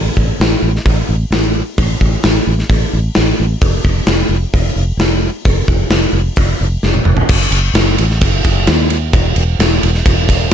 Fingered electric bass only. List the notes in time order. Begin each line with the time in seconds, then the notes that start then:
0.17 A1
0.40 A1
0.62 A1
0.85 A1
1.09 A1
1.31 A1
1.78 A1
2.01 A1
2.24 A1
2.47 A1
2.69 A1
2.93 A1
3.17 A1
3.40 A1
3.62 F1
3.84 F1
4.07 F1
4.29 F1
4.53 F1
4.76 F1
4.97 F1
5.46 F1
5.68 F1
5.90 F1
6.13 F1
6.38 F1
6.61 F1
6.83 F1
7.06 F1
7.29 F#1
7.51 F#1
7.74 F#1
7.99 A1
8.21 F#1
8.45 F#1
8.68 D#2
9.13 E1
9.36 E1
9.59 E1
9.83 E1
10.06 E1